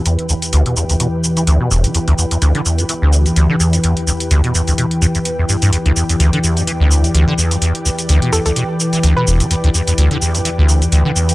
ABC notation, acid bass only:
X:1
M:4/4
L:1/16
Q:"Swing 16ths" 1/4=127
K:Em
V:1 name="Acid bass" clef=bass
E,, z D,, z D,, B,, E,, D,, B,, z2 E, D,, B,, E,,, G, | E,, D,, E,, E,, D,, D, E,, F,, E, D,,2 E,, D,, D, E,, F,, | E,, z D,, z D,, B,, E,, D,, B,, z E,, E,, z E,, G,, G,, | E,, D,, E,, E,, D,, D, E,, F,, E, D,,2 E,, D,, D, E,, F,, |
E,, z D,, z D,, B,, E,, D,, B,, z2 E, D,, B,, E,,, G, | E,, D,, E,, E,, D,, D, E,, F,, E, D,,2 E,, D,, D, E,, F,, |]